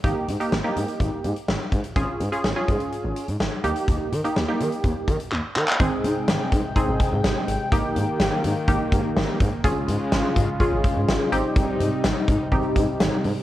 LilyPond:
<<
  \new Staff \with { instrumentName = "Analog polysynth" } { \time 4/4 \key aes \major \tempo 4 = 125 <bes ees' g'>8 r16 <bes ees' g'>16 r16 <bes ees' g'>4. r4 r16 | <des' f' aes'>8 r16 <des' f' aes'>16 r16 <des' f' aes'>4. r8. <bes ees' g'>8~ | <bes ees' g'>8 r16 <bes ees' g'>16 r16 <bes ees' g'>4. r4 r16 | <c' ees' aes'>4. r8 <c' ees' aes'>4. r8 |
<bes ees' g'>4. r8 <bes ees' g'>4. r8 | <des' f' aes'>4. r8 <des' f' aes'>4. <c' ees' g'>8~ | <c' ees' g'>4 r4 <c' ees' g'>4. r8 | }
  \new Staff \with { instrumentName = "Analog synth pad" } { \clef bass \time 4/4 \key aes \major << { r1 | r1 | r1 | g''1~ |
g''1 | f'2.~ f'8 ees'8~ | ees'1 | } \\ { r1 | r1 | r1 | <c aes>1 |
<ees bes>1 | <des aes>2.~ <des aes>8 <c g>8~ | <c g>1 | } >> }
  \new Staff \with { instrumentName = "Analog synth bass" } { \clef bass \time 4/4 \key aes \major aes,,16 r16 aes,16 r16 aes,,16 r16 aes,16 r16 aes,,16 r16 aes,16 r16 aes,,16 r16 aes,16 r16 | aes,,16 r16 aes,16 r16 aes,,16 r16 aes,16 r8 aes,,16 r16 aes,16 aes,,16 r16 ees,16 r16 | ees,16 r16 ees16 r16 ees,16 r16 ees16 r16 ees,16 r16 ees16 r16 ees,16 r16 ees16 r16 | aes,,16 r16 aes,16 r16 aes,,16 r16 aes,16 r8 aes,,16 r16 aes,16 aes,,16 r16 aes,,16 r16 |
aes,,16 r16 aes,16 r16 aes,,16 r16 aes,16 r16 aes,,16 r16 aes,16 r16 aes,,16 r16 aes,16 r16 | aes,,16 r16 aes,16 r16 aes,,16 r16 aes,16 r8 aes,,16 r16 aes,16 aes,,16 r16 aes,,16 r16 | aes,,16 r16 aes,16 r16 aes,,16 r16 aes,16 r16 aes,,16 r16 aes,16 r16 aes,,16 r16 aes,16 r16 | }
  \new DrumStaff \with { instrumentName = "Drums" } \drummode { \time 4/4 <hh bd>8 hh16 hh16 sn8 hh16 hh16 <hh bd>8 hh16 hh16 sn8 <hh bd>16 hh16 | <hh bd>8 hh16 hh16 sn8 <hh bd>16 hh16 hh8 hh16 hh16 sn8 hh16 hh16 | <hh bd>8 hh16 hh16 sn8 hh16 hh16 <hh bd>8 <hh bd>16 hh16 hc8 hc16 hc16 | <hh bd>8 hh8 <hh sn>8 <hh bd>8 <hh bd>8 <hh bd>8 <hh sn>8 hh8 |
<hh bd>8 hh8 <hh sn>8 hh8 <hh bd>8 <hh bd>8 <hh sn>8 <hh bd>8 | <hh bd>8 hh8 <hh sn>8 <hh bd>8 <hh bd>8 <hh bd>8 <hh sn>8 hh8 | <hh bd>8 hh8 <hh sn>8 <hh bd>8 <hh bd>8 <hh bd>8 <hh sn>8 hho8 | }
>>